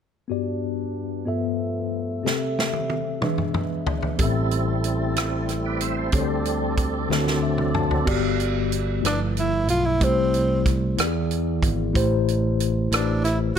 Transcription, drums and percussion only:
0, 0, Header, 1, 2, 480
1, 0, Start_track
1, 0, Key_signature, 1, "major"
1, 0, Tempo, 647249
1, 225, Time_signature, 6, 3, 24, 8
1, 10078, End_track
2, 0, Start_track
2, 0, Title_t, "Drums"
2, 1678, Note_on_c, 9, 38, 36
2, 1753, Note_off_c, 9, 38, 0
2, 1920, Note_on_c, 9, 38, 44
2, 1994, Note_off_c, 9, 38, 0
2, 2028, Note_on_c, 9, 48, 41
2, 2102, Note_off_c, 9, 48, 0
2, 2148, Note_on_c, 9, 48, 48
2, 2222, Note_off_c, 9, 48, 0
2, 2387, Note_on_c, 9, 47, 61
2, 2461, Note_off_c, 9, 47, 0
2, 2507, Note_on_c, 9, 45, 44
2, 2581, Note_off_c, 9, 45, 0
2, 2628, Note_on_c, 9, 45, 62
2, 2702, Note_off_c, 9, 45, 0
2, 2867, Note_on_c, 9, 43, 73
2, 2941, Note_off_c, 9, 43, 0
2, 2985, Note_on_c, 9, 43, 56
2, 3059, Note_off_c, 9, 43, 0
2, 3105, Note_on_c, 9, 42, 64
2, 3109, Note_on_c, 9, 36, 67
2, 3179, Note_off_c, 9, 42, 0
2, 3183, Note_off_c, 9, 36, 0
2, 3346, Note_on_c, 9, 42, 36
2, 3420, Note_off_c, 9, 42, 0
2, 3589, Note_on_c, 9, 42, 46
2, 3663, Note_off_c, 9, 42, 0
2, 3830, Note_on_c, 9, 42, 67
2, 3842, Note_on_c, 9, 37, 75
2, 3904, Note_off_c, 9, 42, 0
2, 3916, Note_off_c, 9, 37, 0
2, 4069, Note_on_c, 9, 42, 37
2, 4079, Note_on_c, 9, 37, 25
2, 4143, Note_off_c, 9, 42, 0
2, 4153, Note_off_c, 9, 37, 0
2, 4306, Note_on_c, 9, 42, 47
2, 4380, Note_off_c, 9, 42, 0
2, 4540, Note_on_c, 9, 42, 59
2, 4546, Note_on_c, 9, 36, 74
2, 4614, Note_off_c, 9, 42, 0
2, 4620, Note_off_c, 9, 36, 0
2, 4787, Note_on_c, 9, 42, 35
2, 4861, Note_off_c, 9, 42, 0
2, 5023, Note_on_c, 9, 42, 51
2, 5025, Note_on_c, 9, 36, 62
2, 5098, Note_off_c, 9, 42, 0
2, 5099, Note_off_c, 9, 36, 0
2, 5275, Note_on_c, 9, 38, 40
2, 5349, Note_off_c, 9, 38, 0
2, 5393, Note_on_c, 9, 38, 32
2, 5468, Note_off_c, 9, 38, 0
2, 5622, Note_on_c, 9, 47, 45
2, 5696, Note_off_c, 9, 47, 0
2, 5744, Note_on_c, 9, 45, 62
2, 5818, Note_off_c, 9, 45, 0
2, 5865, Note_on_c, 9, 43, 54
2, 5939, Note_off_c, 9, 43, 0
2, 5987, Note_on_c, 9, 36, 70
2, 5987, Note_on_c, 9, 49, 65
2, 6061, Note_off_c, 9, 36, 0
2, 6061, Note_off_c, 9, 49, 0
2, 6228, Note_on_c, 9, 42, 39
2, 6302, Note_off_c, 9, 42, 0
2, 6467, Note_on_c, 9, 42, 50
2, 6541, Note_off_c, 9, 42, 0
2, 6710, Note_on_c, 9, 42, 73
2, 6722, Note_on_c, 9, 37, 82
2, 6784, Note_off_c, 9, 42, 0
2, 6796, Note_off_c, 9, 37, 0
2, 6947, Note_on_c, 9, 42, 41
2, 7021, Note_off_c, 9, 42, 0
2, 7182, Note_on_c, 9, 42, 51
2, 7256, Note_off_c, 9, 42, 0
2, 7423, Note_on_c, 9, 42, 66
2, 7425, Note_on_c, 9, 36, 71
2, 7497, Note_off_c, 9, 42, 0
2, 7499, Note_off_c, 9, 36, 0
2, 7667, Note_on_c, 9, 42, 37
2, 7741, Note_off_c, 9, 42, 0
2, 7903, Note_on_c, 9, 42, 49
2, 7904, Note_on_c, 9, 36, 72
2, 7914, Note_on_c, 9, 37, 25
2, 7977, Note_off_c, 9, 42, 0
2, 7978, Note_off_c, 9, 36, 0
2, 7988, Note_off_c, 9, 37, 0
2, 8145, Note_on_c, 9, 42, 74
2, 8157, Note_on_c, 9, 37, 81
2, 8219, Note_off_c, 9, 42, 0
2, 8231, Note_off_c, 9, 37, 0
2, 8386, Note_on_c, 9, 42, 40
2, 8460, Note_off_c, 9, 42, 0
2, 8621, Note_on_c, 9, 36, 64
2, 8627, Note_on_c, 9, 42, 51
2, 8695, Note_off_c, 9, 36, 0
2, 8701, Note_off_c, 9, 42, 0
2, 8865, Note_on_c, 9, 36, 74
2, 8868, Note_on_c, 9, 42, 65
2, 8939, Note_off_c, 9, 36, 0
2, 8942, Note_off_c, 9, 42, 0
2, 9110, Note_on_c, 9, 42, 40
2, 9184, Note_off_c, 9, 42, 0
2, 9346, Note_on_c, 9, 42, 51
2, 9420, Note_off_c, 9, 42, 0
2, 9584, Note_on_c, 9, 42, 81
2, 9596, Note_on_c, 9, 37, 85
2, 9658, Note_off_c, 9, 42, 0
2, 9670, Note_off_c, 9, 37, 0
2, 9825, Note_on_c, 9, 42, 41
2, 9835, Note_on_c, 9, 37, 30
2, 9899, Note_off_c, 9, 42, 0
2, 9910, Note_off_c, 9, 37, 0
2, 10078, End_track
0, 0, End_of_file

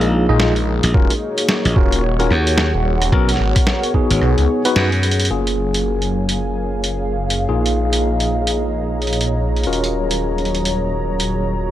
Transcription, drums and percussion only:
0, 0, Header, 1, 2, 480
1, 0, Start_track
1, 0, Key_signature, -6, "minor"
1, 0, Tempo, 545455
1, 832, Time_signature, 4, 2, 24, 8
1, 10305, End_track
2, 0, Start_track
2, 0, Title_t, "Drums"
2, 11, Note_on_c, 9, 42, 33
2, 99, Note_off_c, 9, 42, 0
2, 349, Note_on_c, 9, 38, 117
2, 437, Note_off_c, 9, 38, 0
2, 494, Note_on_c, 9, 42, 34
2, 582, Note_off_c, 9, 42, 0
2, 732, Note_on_c, 9, 42, 61
2, 820, Note_off_c, 9, 42, 0
2, 831, Note_on_c, 9, 36, 106
2, 919, Note_off_c, 9, 36, 0
2, 971, Note_on_c, 9, 42, 54
2, 1059, Note_off_c, 9, 42, 0
2, 1212, Note_on_c, 9, 42, 65
2, 1300, Note_off_c, 9, 42, 0
2, 1308, Note_on_c, 9, 38, 114
2, 1396, Note_off_c, 9, 38, 0
2, 1454, Note_on_c, 9, 42, 46
2, 1542, Note_off_c, 9, 42, 0
2, 1550, Note_on_c, 9, 36, 96
2, 1638, Note_off_c, 9, 36, 0
2, 1693, Note_on_c, 9, 42, 64
2, 1781, Note_off_c, 9, 42, 0
2, 1933, Note_on_c, 9, 42, 36
2, 2021, Note_off_c, 9, 42, 0
2, 2029, Note_on_c, 9, 37, 40
2, 2117, Note_off_c, 9, 37, 0
2, 2173, Note_on_c, 9, 42, 62
2, 2261, Note_off_c, 9, 42, 0
2, 2267, Note_on_c, 9, 38, 114
2, 2355, Note_off_c, 9, 38, 0
2, 2654, Note_on_c, 9, 37, 41
2, 2654, Note_on_c, 9, 42, 65
2, 2742, Note_off_c, 9, 37, 0
2, 2742, Note_off_c, 9, 42, 0
2, 2750, Note_on_c, 9, 36, 113
2, 2838, Note_off_c, 9, 36, 0
2, 2893, Note_on_c, 9, 42, 56
2, 2940, Note_on_c, 9, 38, 39
2, 2981, Note_off_c, 9, 42, 0
2, 3028, Note_off_c, 9, 38, 0
2, 3131, Note_on_c, 9, 37, 39
2, 3131, Note_on_c, 9, 42, 71
2, 3134, Note_on_c, 9, 36, 101
2, 3219, Note_off_c, 9, 37, 0
2, 3219, Note_off_c, 9, 42, 0
2, 3222, Note_off_c, 9, 36, 0
2, 3227, Note_on_c, 9, 38, 115
2, 3315, Note_off_c, 9, 38, 0
2, 3374, Note_on_c, 9, 42, 51
2, 3462, Note_off_c, 9, 42, 0
2, 3469, Note_on_c, 9, 36, 58
2, 3557, Note_off_c, 9, 36, 0
2, 3613, Note_on_c, 9, 42, 65
2, 3701, Note_off_c, 9, 42, 0
2, 3709, Note_on_c, 9, 37, 40
2, 3797, Note_off_c, 9, 37, 0
2, 3853, Note_on_c, 9, 42, 37
2, 3941, Note_off_c, 9, 42, 0
2, 4093, Note_on_c, 9, 42, 64
2, 4181, Note_off_c, 9, 42, 0
2, 4188, Note_on_c, 9, 38, 113
2, 4276, Note_off_c, 9, 38, 0
2, 4332, Note_on_c, 9, 42, 37
2, 4420, Note_off_c, 9, 42, 0
2, 4427, Note_on_c, 9, 42, 56
2, 4501, Note_off_c, 9, 42, 0
2, 4501, Note_on_c, 9, 42, 66
2, 4572, Note_off_c, 9, 42, 0
2, 4572, Note_on_c, 9, 42, 73
2, 4620, Note_off_c, 9, 42, 0
2, 4620, Note_on_c, 9, 42, 80
2, 4708, Note_off_c, 9, 42, 0
2, 4814, Note_on_c, 9, 42, 53
2, 4902, Note_off_c, 9, 42, 0
2, 5055, Note_on_c, 9, 42, 68
2, 5143, Note_off_c, 9, 42, 0
2, 5296, Note_on_c, 9, 42, 45
2, 5384, Note_off_c, 9, 42, 0
2, 5534, Note_on_c, 9, 42, 65
2, 5622, Note_off_c, 9, 42, 0
2, 6017, Note_on_c, 9, 42, 65
2, 6105, Note_off_c, 9, 42, 0
2, 6426, Note_on_c, 9, 42, 65
2, 6514, Note_off_c, 9, 42, 0
2, 6738, Note_on_c, 9, 42, 56
2, 6826, Note_off_c, 9, 42, 0
2, 6976, Note_on_c, 9, 42, 67
2, 7064, Note_off_c, 9, 42, 0
2, 7217, Note_on_c, 9, 42, 48
2, 7305, Note_off_c, 9, 42, 0
2, 7454, Note_on_c, 9, 42, 61
2, 7542, Note_off_c, 9, 42, 0
2, 7935, Note_on_c, 9, 42, 30
2, 7983, Note_off_c, 9, 42, 0
2, 7983, Note_on_c, 9, 42, 36
2, 8032, Note_off_c, 9, 42, 0
2, 8032, Note_on_c, 9, 42, 46
2, 8102, Note_off_c, 9, 42, 0
2, 8102, Note_on_c, 9, 42, 55
2, 8190, Note_off_c, 9, 42, 0
2, 8417, Note_on_c, 9, 42, 27
2, 8479, Note_off_c, 9, 42, 0
2, 8479, Note_on_c, 9, 42, 37
2, 8560, Note_off_c, 9, 42, 0
2, 8560, Note_on_c, 9, 42, 51
2, 8648, Note_off_c, 9, 42, 0
2, 8657, Note_on_c, 9, 42, 55
2, 8745, Note_off_c, 9, 42, 0
2, 8895, Note_on_c, 9, 42, 63
2, 8983, Note_off_c, 9, 42, 0
2, 9136, Note_on_c, 9, 42, 20
2, 9198, Note_off_c, 9, 42, 0
2, 9198, Note_on_c, 9, 42, 30
2, 9280, Note_off_c, 9, 42, 0
2, 9280, Note_on_c, 9, 42, 39
2, 9368, Note_off_c, 9, 42, 0
2, 9375, Note_on_c, 9, 42, 61
2, 9463, Note_off_c, 9, 42, 0
2, 9854, Note_on_c, 9, 42, 61
2, 9942, Note_off_c, 9, 42, 0
2, 10305, End_track
0, 0, End_of_file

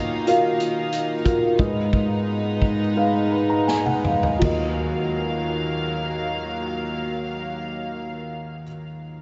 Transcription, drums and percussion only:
0, 0, Header, 1, 2, 480
1, 0, Start_track
1, 0, Key_signature, -6, "minor"
1, 0, Tempo, 657895
1, 1158, Time_signature, 4, 2, 24, 8
1, 1158, Tempo, 697674
1, 2598, Tempo, 750000
1, 6143, End_track
2, 0, Start_track
2, 0, Title_t, "Drums"
2, 197, Note_on_c, 9, 42, 65
2, 270, Note_off_c, 9, 42, 0
2, 437, Note_on_c, 9, 42, 62
2, 510, Note_off_c, 9, 42, 0
2, 675, Note_on_c, 9, 42, 75
2, 748, Note_off_c, 9, 42, 0
2, 915, Note_on_c, 9, 42, 50
2, 916, Note_on_c, 9, 36, 66
2, 988, Note_off_c, 9, 42, 0
2, 989, Note_off_c, 9, 36, 0
2, 1160, Note_on_c, 9, 36, 92
2, 1229, Note_off_c, 9, 36, 0
2, 1394, Note_on_c, 9, 36, 72
2, 1462, Note_off_c, 9, 36, 0
2, 1866, Note_on_c, 9, 36, 61
2, 1935, Note_off_c, 9, 36, 0
2, 2598, Note_on_c, 9, 38, 43
2, 2662, Note_off_c, 9, 38, 0
2, 2715, Note_on_c, 9, 48, 49
2, 2779, Note_off_c, 9, 48, 0
2, 2831, Note_on_c, 9, 45, 59
2, 2895, Note_off_c, 9, 45, 0
2, 2950, Note_on_c, 9, 43, 65
2, 3014, Note_off_c, 9, 43, 0
2, 3068, Note_on_c, 9, 43, 73
2, 3068, Note_on_c, 9, 49, 57
2, 3070, Note_on_c, 9, 36, 71
2, 3132, Note_off_c, 9, 43, 0
2, 3132, Note_off_c, 9, 49, 0
2, 3134, Note_off_c, 9, 36, 0
2, 6143, End_track
0, 0, End_of_file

